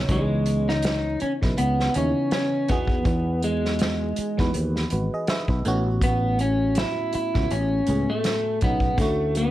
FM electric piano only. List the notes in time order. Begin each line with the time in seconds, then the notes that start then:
Already playing: C#3 B3 D#4 E4 C#5
0.09 C#3 E3 B3 D#4 C#5
1.41 C#3 B3 D#4 E4 B4
1.95 C#3 B3 D#4 E4 C#5
2.69 E3 B3 D#4 F#4 G#4
4.37 E3 B3 D#4 F#4 B4
4.92 F#4 B4
5.14 G#4 D#5
5.30 B4 E5
5.50 F#4 B4
5.65 A2 A3 B3 C#4 F#4
7.34 A2 A3 B3 C#4 F#4
7.87 A2 A3 B3 C#4 G#4
8.62 A2 A3 B3 C#4 D#4
8.99 D3 A3 C#4 E4 F#4